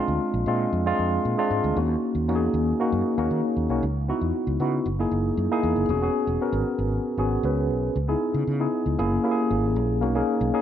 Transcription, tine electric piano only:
Already playing: G#3 C4 D4 F4
0.47 G#3 C4 D4 F4
0.86 G#3 C4 D4 F4
1.38 G#3 C4 D4 F4
1.76 A#3 C#4 D#4 F#4
2.28 A#3 C#4 D#4 F#4
2.35 G#4
2.80 A#3 C#4 D#4 F#4
3.18 A#3 C#4 D#4 F#4
3.70 A#3 C#4 D#4 F#4
4.08 B3 D#4 E4 F#4
4.60 B3 D#4 E4 F#4
4.99 A#3 D#4 E4 G#4
5.51 A#3 D#4 E4 G#4
5.89 B3 C#4 F#4 G#4
6.02 B3 C#4 F#4 G#4
6.41 B3 C#4 F#4 A#4
7.18 B3 C#4 F#4 G#4
7.44 B3 C#4 F#4 B4
8.08 B3 D#4 E4 G#4
8.60 B3 D#4 E4 G#4
8.98 A#3 C#4 E4 G#4
9.24 A#3 C#4 E4 G4
9.31 G#4
10.01 A#3 C#4 D#4 F#4
10.15 A#3 C#4 D#4 G#4
10.54 A#3 C#4 D#4 G#4

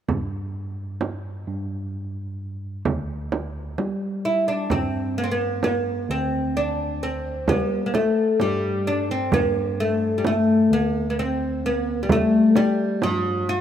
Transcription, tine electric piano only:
0.08 G2
1.47 G2
2.86 D2
3.78 G3
4.71 G2
6.09 D2
7.48 G3
8.40 G2
9.31 G2
10.71 D2
12.10 G3
13.02 G2

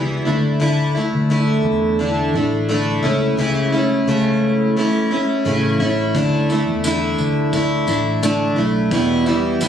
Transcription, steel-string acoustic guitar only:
Already playing: E2 B2 E3 G3 B3 E4
0.25 A3 D4 E4
0.60 D3 A3 D4 E4
0.95 A3 D4 E4
1.30 D3 A3 D4 E4
1.99 D3 A3 D4 E4
2.34 A3 D4 E4
2.69 D3 A3 D4 E4
3.03 A3 C#4 E4
3.37 C#3 E3 A3 C#4 E4
3.72 A3 C#4 E4
4.07 C#3 E3 A3 C#4 E4
4.77 E3 A3 C#4 E4
5.11 A3 C#4 E4
5.45 C#3 E3 A3 C#4 E4
5.80 A3 C#4 E4
6.15 D3 A3 D4 E4
6.50 A3 D4 E4
6.84 D3 A3 D4 E4
7.53 D3 A3 D4 E4
7.87 A3 D4 E4
8.23 D3 A3 D4 E4
8.56 A3 D4 E4
8.91 E2 B2 E3 G3 B3 E4
9.26 E3 G3 B3 E4
9.60 E2 B2 E3 G3 B3 E4

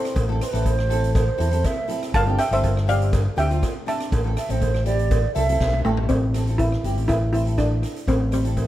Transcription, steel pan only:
Already playing: A4 C5
2.14 F5 A5
2.39 E5 G5
2.53 C5 E5
2.89 D5 F5
3.38 E5 G5
3.88 E5 A5
5.85 A3
6.09 C4
6.58 E4
7.08 E4
7.33 E4
7.58 D4
8.09 C4
8.33 C4

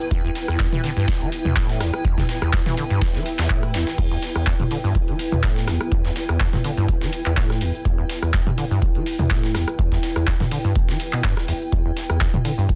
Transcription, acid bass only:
0.11 E2
0.24 E2
0.48 E2
0.59 E2
0.73 E3
0.84 D3
0.97 G2
1.08 E1
1.21 E3
1.45 E2
1.56 A2
1.81 E2
2.05 E2
2.18 E2
2.42 E2
2.53 E2
2.66 E3
2.77 D3
2.90 G2
3.02 E1
3.15 E3
3.39 E2
3.50 A2
3.74 E2
3.98 E2
4.11 E2
4.36 E2
4.47 E2
4.60 G2
4.71 D3
4.84 G2
4.95 E1
5.08 E3
5.32 E2
5.43 A2
5.68 E2
5.92 E2
6.05 E2
6.29 E2
6.53 G2
6.64 D3
6.77 G2
6.89 E1
7.02 E3
7.26 E2
7.37 A2
7.61 E2
7.85 E2
7.98 E2
8.22 E2
8.47 G2
8.58 D3
8.71 G2
8.82 E1
8.95 E3
9.19 E2
9.30 A2
9.55 E2
9.79 E2
9.92 E2
10.16 E2
10.40 G2
10.52 D3
10.65 G2
10.76 E1
10.89 E3
11.13 B2
11.24 G2
11.48 E2
11.72 E2
11.85 E2
12.10 E2
12.21 E2
12.34 G2
12.45 D3
12.58 G2
12.69 E1

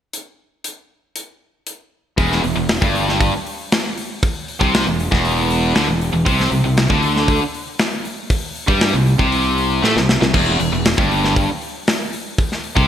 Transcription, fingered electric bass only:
2.18 E1
2.44 E1
2.57 E1
2.82 G1
4.61 C2
4.87 E1
5.12 E1
5.76 D2
5.88 E1
6.14 E1
6.26 C2
6.51 C2
6.64 C2
6.90 D2
8.68 G2
8.94 C2
9.20 C2
9.83 A2
9.96 C2
10.22 C2
10.34 E1
10.60 E1
10.73 E1
10.98 G1
12.77 C2

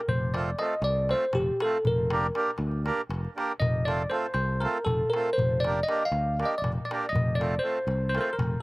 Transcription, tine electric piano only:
0.09 C5
0.34 D5
0.59 D#5
0.84 D5
1.11 C5
1.35 G4
1.62 A4
1.87 A#4
3.60 D#5
3.85 D5
4.10 C5
4.34 C5
4.60 A#4
4.85 A4
5.10 A#4
5.33 C5
5.60 D5
5.83 D#5
6.05 F5
6.45 D#5
6.58 D5
6.85 D5
7.09 D#5
7.35 D5
7.59 C5
8.09 C5
8.18 A#4 C5
8.33 A#4

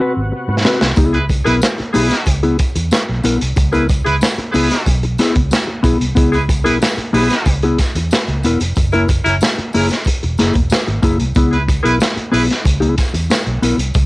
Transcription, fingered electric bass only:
0.17 G#1
0.48 G#2
0.81 C2
0.97 C#2
1.46 B1
1.80 muted fingered electric bass stroke
1.96 B1
2.27 C#2
2.76 E2
3.09 B1
3.25 B1
3.42 C2
3.57 C#2
4.06 C#2
4.38 muted fingered electric bass stroke
4.54 C#2
4.86 B1
5.36 C#2
5.84 B1
6.00 C2
6.17 C#2
6.65 B1
6.98 muted fingered electric bass stroke
7.14 B1
7.46 C#2
7.95 E2
8.28 C#2
8.44 E1
8.61 F1
8.76 F#1
9.25 F#1
9.58 muted fingered electric bass stroke
9.75 F#1
10.24 E1
10.41 F#1
10.55 E1
10.88 G#1
11.03 F#1
11.20 C2
11.36 C#2
11.85 B1
12.17 muted fingered electric bass stroke
12.33 B1
12.65 C#2
13.14 E2
13.47 B1
13.62 B1
13.77 C2
13.95 C#2

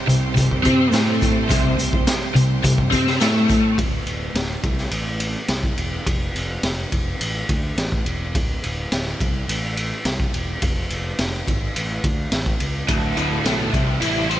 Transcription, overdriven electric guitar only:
0.08 C3
0.35 C3
0.63 C4
0.91 A3
1.49 C3
1.77 C3
2.35 C3
2.64 C3
2.91 C4
3.21 A3
12.88 D2
13.16 A2
13.44 A3
13.72 C3
14.01 E4
14.29 C5

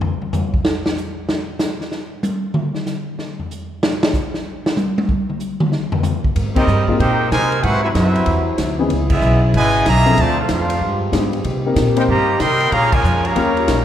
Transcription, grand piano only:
6.55 G#3 A#3 C4 D#4 G4
6.88 G#3 A#3 C4 D#4 F4
8.79 E3 B3 C#4 D#4 G#4
10.05 F3 C4 D4 E4 A4
11.12 G3 B3 D4 F4 G#4
11.66 A#3 C4 D#4 G4 A#4
11.96 A#3 C4 D#4 G4 C5
13.36 A#3 C#4 F4 G4 C#5

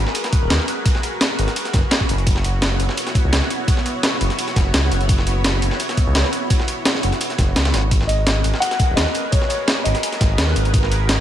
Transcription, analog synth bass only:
0.42 D#1
0.50 D#2
1.39 G#1
1.74 F#1
2.09 F#1
2.80 F#1
3.24 C#2
3.33 C#2
4.21 F#1
4.56 F#1
4.74 C#2
4.91 F#1
5.62 F#1
6.06 C#2
6.15 C#2
7.03 F#1
7.38 F#1
7.56 C#2
7.74 G#1
8.44 G#1
8.89 D#1
8.97 D#2
9.85 G#1
10.21 G#1
10.38 D#2
10.56 G#1

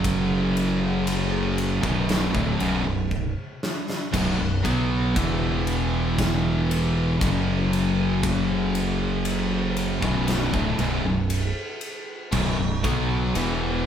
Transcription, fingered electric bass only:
Already playing: F#1
1.83 B0
2.35 D1
2.60 B0
2.86 B0
4.14 B0
4.39 B0
4.65 B1
5.17 E1
7.22 F#1
10.02 B0
10.53 D1
10.78 B0
11.04 B0
12.33 B0
12.59 B0
12.84 B1
13.36 E1

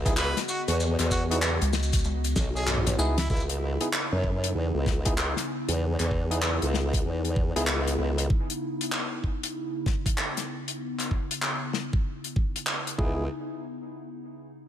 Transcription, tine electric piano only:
0.06 B3 D#4 E4 G#4
1.30 B3 D#4 E4 G#4
2.98 B3 D#4 E4 G#4
3.81 B3 D#4 E4 G#4
5.06 B3 D#4 E4 G#4
6.31 B3 D#4 E4 G#4
7.56 B3 D#4 E4 G#4
12.98 B3 D#4 E4 G#4

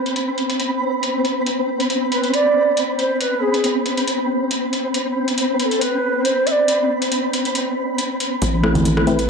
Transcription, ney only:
2.12 B4
2.34 D5
2.99 C5
3.16 C5
3.21 B4
3.42 G#4
5.60 B4
5.64 A4
5.81 B4
6.25 C5
6.47 E5
6.51 D5
9.07 B4

